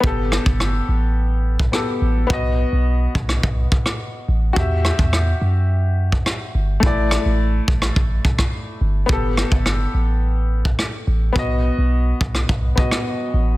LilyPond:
<<
  \new Staff \with { instrumentName = "Grand piano" } { \time 4/4 \key g \lydian \tempo 4 = 106 <b g' a'>2. <b g' a'>4 | <b fis' dis''>1 | <fis' g' e''>1 | <a e' d''>1 |
<b g' a'>1 | <b fis' dis''>2~ <b fis' dis''>8 <b fis' dis''>4. | }
  \new Staff \with { instrumentName = "808-style bass" } { \clef bass \time 4/4 \key g \lydian g,,8. g,,8. a,,4. r8 a,,8 | b,,8. b,,8. b,,8 b,,8 r4 a,,8 | e,8. e,8. fis,4. r8 g,,8 | a,,8. a,,8. a,,8 a,,8 r4 g,,8 |
g,,8. g,,8. a,,4. r8 a,,8 | b,,8. b,,8. b,,8 b,,8 r4 a,,8 | }
  \new DrumStaff \with { instrumentName = "Drums" } \drummode { \time 4/4 bd8 ss16 bd16 ss4 r8. bd16 ss4 | bd4 r8 bd16 ss16 bd8 bd16 ss16 r4 | bd8 ss16 bd16 ss4 r8. bd16 ss4 | bd8 ss8 r8 bd16 ss16 bd8 bd16 <bd ss>16 r4 |
bd8 ss16 bd16 ss4 r8. bd16 ss4 | bd4 r8 bd16 ss16 bd8 bd16 ss16 r4 | }
>>